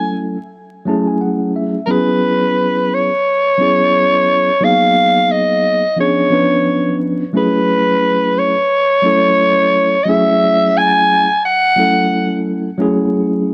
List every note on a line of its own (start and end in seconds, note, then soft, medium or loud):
0.00 0.36 F#3 medium
0.00 0.36 A3 medium
0.00 0.37 C#4 medium
0.00 0.37 E4 medium
0.00 0.37 A4 medium
0.00 0.21 G#5 medium
0.85 1.77 F#3 medium
0.85 1.77 A3 medium
0.85 1.78 C#4 medium
0.85 1.78 E4 medium
0.85 1.79 G#4 medium
0.85 1.06 A5 medium
1.07 1.20 G#5 medium
1.21 1.53 F#5 medium
1.56 1.87 E5 medium
1.86 3.08 F#3 medium
1.86 3.09 B3 medium
1.86 3.09 C#4 medium
1.86 3.09 E4 medium
1.86 1.93 A#4 medium
1.91 3.10 G#4 medium
1.91 2.95 B4 medium
2.94 4.66 C#5 medium
3.58 4.49 F#3 medium
3.58 4.50 B3 medium
3.58 4.50 C#4 medium
3.58 4.51 E4 medium
3.58 4.51 G#4 medium
4.61 5.81 F#3 medium
4.61 5.82 A#3 medium
4.61 5.82 B3 medium
4.61 5.82 D#4 medium
4.61 5.83 G#4 medium
4.61 5.33 F5 loud
5.31 5.99 D#5 medium
5.96 6.28 F3 medium
5.96 6.28 B3 medium
5.96 6.29 C#4 medium
5.96 6.29 D4 medium
5.96 6.29 G#4 medium
5.96 6.98 C#5 medium
6.30 7.22 F3 medium
6.30 7.22 B3 medium
6.30 7.23 C#4 medium
6.30 7.23 D4 medium
6.30 7.24 B4 medium
7.33 8.54 F#3 medium
7.33 8.54 A3 medium
7.33 8.54 C#4 medium
7.33 8.55 E4 medium
7.33 8.55 G#4 medium
7.33 8.40 B4 medium
8.38 10.05 C#5 loud
9.02 9.94 F#3 medium
9.02 9.95 A3 medium
9.02 9.95 C#4 medium
9.02 9.96 E4 medium
9.02 9.96 A4 medium
10.04 11.26 F#3 medium
10.04 11.27 A3 medium
10.04 10.10 D#5 medium
10.08 11.27 C#4 medium
10.08 11.28 E4 medium
10.08 11.28 G#4 loud
10.08 10.79 E5 loud
10.77 11.44 G#5 loud
11.45 12.43 F#5 loud
11.76 12.67 F#3 medium
11.76 12.68 A3 medium
11.76 12.68 C#4 medium
11.76 12.69 E4 medium
11.76 12.69 A4 medium
12.78 13.54 F#3 medium
12.78 13.54 A3 medium
12.78 13.54 C#4 medium
12.78 13.54 E4 medium
12.78 13.54 G#4 loud